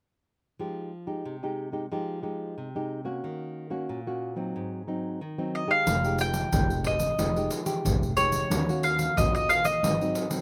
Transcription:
0.59 1.22 F3 medium
0.59 0.90 G#3 soft
0.59 0.91 D#4 soft
0.59 0.91 G4 soft
1.07 1.35 G#3 soft
1.07 1.36 D#4 medium
1.07 1.36 G4 soft
1.25 1.88 C3 medium
1.43 1.70 G#3 medium
1.43 1.70 D#4 medium
1.43 1.70 G4 medium
1.72 1.85 G#3 soft
1.72 1.85 D#4 soft
1.72 1.85 G4 medium
1.92 2.54 F3 medium
1.92 2.19 G#3 soft
1.92 2.19 D#4 soft
1.92 2.20 G4 medium
2.23 2.68 G#3 soft
2.23 2.68 D#4 soft
2.23 2.68 G4 soft
2.58 3.20 C3 medium
2.75 3.02 G#3 soft
2.75 3.02 D#4 medium
2.75 3.03 G4 medium
3.05 3.67 A#3 soft
3.05 3.67 C#4 soft
3.05 3.67 F#4 medium
3.24 3.86 D#3 medium
3.70 3.99 A#3 medium
3.70 4.00 C#4 soft
3.70 4.00 F#4 medium
3.89 4.52 A#2 medium
4.07 4.34 A#3 medium
4.07 4.34 C#4 soft
4.07 4.34 F#4 medium
4.36 4.82 F#3 medium
4.36 4.82 C4 medium
4.36 4.82 D#4 soft
4.56 5.18 G#2 medium
4.87 5.19 F#3 soft
4.87 5.19 C4 soft
4.87 5.19 D#4 soft
5.21 5.84 D#3 medium
5.38 5.66 F#3 soft
5.38 5.66 C4 medium
5.38 5.66 D#4 medium
5.55 5.72 D#5 medium
5.67 6.03 G#3 medium
5.67 6.04 D#4 soft
5.67 6.04 G4 medium
5.67 6.20 F5 medium
5.87 6.43 F1 medium
5.87 6.50 F3 soft
5.87 pandeiro medium
5.87 shaker medium
5.87 surdo medium
6.04 6.48 G#3 medium
6.04 6.49 D#4 medium
6.04 6.49 G4 medium
6.04 pandeiro soft
6.04 shaker soft
6.18 6.83 G5 medium
6.18 pandeiro medium
6.18 shaker medium
6.34 pandeiro medium
6.34 shaker medium
6.52 7.09 F1 medium
6.52 7.16 C3 medium
6.52 7.14 G#3 soft
6.52 7.14 D#4 medium
6.52 7.14 G4 medium
6.52 pandeiro medium
6.52 shaker medium
6.52 surdo medium
6.70 pandeiro soft
6.70 shaker soft
6.84 7.49 D#5 medium
6.84 pandeiro medium
6.84 surdo medium
7.00 pandeiro soft
7.00 shaker medium
7.18 7.47 F1 medium
7.18 7.82 F3 soft
7.18 7.30 G#3 soft
7.18 7.31 D#4 soft
7.18 7.31 G4 soft
7.18 pandeiro medium
7.18 shaker medium
7.18 surdo medium
7.36 7.64 G#3 medium
7.36 7.64 D#4 medium
7.36 7.64 G4 medium
7.36 pandeiro soft
7.36 shaker soft
7.51 pandeiro medium
7.51 shaker medium
7.66 8.12 G#3 medium
7.66 8.12 D#4 medium
7.66 8.12 G4 medium
7.66 pandeiro medium
7.66 shaker medium
7.85 8.41 F1 medium
7.85 8.48 C3 soft
7.85 pandeiro medium
7.85 shaker medium
7.85 surdo medium
8.03 pandeiro soft
8.03 shaker soft
8.17 8.48 G#3 soft
8.17 8.48 D#4 soft
8.17 8.48 G4 medium
8.17 8.86 C#5 medium
8.17 pandeiro medium
8.17 shaker medium
8.32 pandeiro soft
8.32 shaker medium
8.50 9.07 D#2 medium
8.50 9.14 D#3 soft
8.50 8.63 A#3 medium
8.50 8.63 C#4 medium
8.50 8.63 F#4 soft
8.50 pandeiro medium
8.50 shaker medium
8.50 surdo medium
8.69 9.12 A#3 medium
8.69 9.13 C#4 medium
8.69 9.13 F#4 medium
8.69 pandeiro soft
8.69 shaker soft
8.83 9.18 F5 medium
8.83 pandeiro medium
8.99 pandeiro medium
8.99 shaker medium
9.16 9.73 D#2 medium
9.16 9.80 A#2 medium
9.16 9.60 A#3 medium
9.16 9.60 C#4 medium
9.16 9.61 F#4 medium
9.16 9.33 D#5 medium
9.16 pandeiro medium
9.16 shaker medium
9.16 surdo medium
9.35 9.50 D#5 medium
9.35 pandeiro soft
9.35 shaker soft
9.49 9.65 F5 medium
9.49 pandeiro medium
9.49 shaker medium
9.65 10.28 D#5 medium
9.65 pandeiro soft
9.65 shaker medium
9.83 10.11 G#1 medium
9.83 10.41 G#2 soft
9.83 9.95 F#3 soft
9.83 9.95 C4 medium
9.83 9.95 D#4 medium
9.83 pandeiro medium
9.83 shaker medium
9.83 surdo medium
10.01 10.28 F#3 medium
10.01 10.28 C4 medium
10.01 10.29 D#4 medium
10.01 pandeiro soft
10.01 shaker soft
10.15 pandeiro medium
10.15 shaker medium
10.30 10.41 F#3 medium
10.30 10.41 C4 medium
10.30 10.41 D#4 medium
10.30 pandeiro medium
10.30 shaker medium

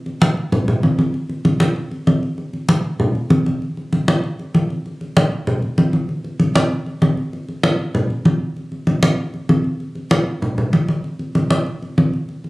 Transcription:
0.06 high conga soft
0.22 high conga loud
0.37 high conga soft
0.52 high conga soft
0.52 low conga medium
0.68 high conga soft
0.68 low conga medium
0.83 high conga medium
0.99 high conga medium
1.14 high conga soft
1.29 high conga soft
1.45 high conga medium
1.60 high conga medium
1.76 high conga soft
1.91 high conga soft
2.07 high conga medium
2.23 high conga soft
2.38 high conga soft
2.53 high conga soft
2.69 high conga loud
2.84 high conga soft
3.00 high conga soft
3.00 low conga medium
3.15 high conga soft
3.30 high conga medium
3.46 high conga medium
3.62 high conga soft
3.77 high conga soft
3.93 high conga medium
4.08 high conga loud
4.24 high conga soft
4.39 high conga soft
4.54 high conga medium
4.70 high conga soft
4.86 high conga soft
5.01 high conga soft
5.17 high conga loud
5.32 high conga soft
5.47 high conga soft
5.47 low conga medium
5.62 high conga soft
5.78 high conga medium
5.93 high conga medium
6.09 high conga soft
6.24 high conga soft
6.40 high conga medium
6.56 high conga loud
6.71 high conga soft
6.86 high conga soft
7.02 high conga medium
7.17 high conga soft
7.33 high conga soft
7.49 high conga soft
7.63 high conga loud
7.79 high conga soft
7.95 high conga soft
7.95 low conga medium
8.10 high conga soft
8.25 high conga loud
8.56 high conga soft
8.72 high conga soft
8.87 high conga medium
9.03 high conga loud
9.18 high conga soft
9.34 high conga soft
9.49 high conga medium
9.64 high conga soft
9.80 high conga soft
9.95 high conga soft
10.11 high conga loud
10.26 high conga soft
10.42 high conga soft
10.42 low conga medium
10.58 high conga soft
10.58 low conga medium
10.73 high conga medium
10.88 high conga medium
11.04 high conga soft
11.19 high conga soft
11.35 high conga medium
11.51 high conga medium
11.66 high conga soft
11.82 high conga soft
11.98 high conga medium
12.14 high conga soft
12.29 high conga soft
12.44 high conga soft

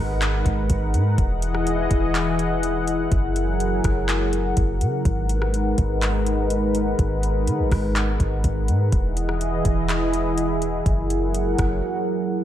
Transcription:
0.00 0.44 G#1 loud
0.00 1.14 G#3 medium
0.00 1.14 D#4 medium
0.00 1.14 A#4 medium
0.00 1.14 B4 medium
0.00 1.14 F#5 medium
0.22 clap loud
0.22 closed hi-hat medium
0.46 0.69 G#1 loud
0.46 kick medium
0.46 closed hi-hat medium
0.70 0.95 G#1 loud
0.70 kick medium
0.70 closed hi-hat medium
0.94 1.17 G#2 loud
0.94 closed hi-hat medium
1.18 1.88 E1 loud
1.18 3.10 E3 medium
1.18 5.01 E4 medium
1.18 3.10 G#4 medium
1.18 3.10 D#5 medium
1.18 10.82 F#5 medium
1.18 kick loud
1.18 closed hi-hat medium
1.42 closed hi-hat medium
1.55 cross-stick medium
1.67 closed hi-hat medium
1.91 3.08 E1 loud
1.91 kick loud
1.91 closed hi-hat medium
2.15 clap loud
2.15 closed hi-hat medium
2.39 closed hi-hat medium
2.63 closed hi-hat medium
2.88 closed hi-hat medium
3.12 3.81 F#1 loud
3.12 5.03 F#3 medium
3.12 5.03 G#4 medium
3.12 8.88 A#4 medium
3.12 kick loud
3.12 closed hi-hat medium
3.36 closed hi-hat medium
3.60 closed hi-hat medium
3.84 4.54 F#1 loud
3.84 kick loud
3.84 cross-stick loud
3.84 closed hi-hat medium
4.09 clap loud
4.09 closed hi-hat medium
4.33 closed hi-hat medium
4.57 4.83 F#1 loud
4.57 kick medium
4.57 closed hi-hat medium
4.81 5.04 C#3 loud
4.81 closed hi-hat medium
5.05 5.75 G#1 loud
5.05 8.89 G#3 medium
5.05 8.89 D#4 medium
5.05 8.89 B4 medium
5.05 kick loud
5.05 closed hi-hat medium
5.29 closed hi-hat medium
5.42 cross-stick medium
5.54 closed hi-hat medium
5.78 6.95 G#1 loud
5.78 kick loud
5.78 closed hi-hat medium
6.02 clap loud
6.02 closed hi-hat medium
6.27 closed hi-hat medium
6.50 closed hi-hat medium
6.75 closed hi-hat medium
6.99 7.49 G#1 loud
6.99 kick loud
6.99 closed hi-hat medium
7.23 closed hi-hat medium
7.47 7.61 D#3 loud
7.47 closed hi-hat medium
7.59 7.71 G#1 loud
7.71 8.18 G#1 loud
7.71 kick loud
7.71 cross-stick loud
7.71 open hi-hat medium
7.96 clap loud
7.96 closed hi-hat medium
8.20 8.43 G#1 loud
8.20 kick loud
8.20 closed hi-hat medium
8.44 8.70 G#1 loud
8.44 kick medium
8.44 closed hi-hat medium
8.68 8.91 G#2 loud
8.68 closed hi-hat medium
8.92 9.62 E1 loud
8.92 10.84 E3 medium
8.92 12.44 E4 medium
8.92 12.44 G#4 medium
8.92 10.84 D#5 medium
8.92 kick loud
8.92 closed hi-hat medium
9.17 closed hi-hat medium
9.29 cross-stick medium
9.41 closed hi-hat medium
9.65 10.82 E1 loud
9.65 kick loud
9.65 closed hi-hat medium
9.89 clap loud
9.89 closed hi-hat medium
10.13 closed hi-hat medium
10.38 closed hi-hat medium
10.62 closed hi-hat medium
10.86 11.56 F#1 loud
10.86 12.44 F#3 medium
10.86 12.44 A#4 medium
10.86 12.44 F#5 medium
10.86 kick loud
10.86 closed hi-hat medium
11.10 closed hi-hat medium
11.35 closed hi-hat medium
11.59 11.82 F#1 loud
11.59 kick loud
11.59 cross-stick loud
11.59 closed hi-hat medium

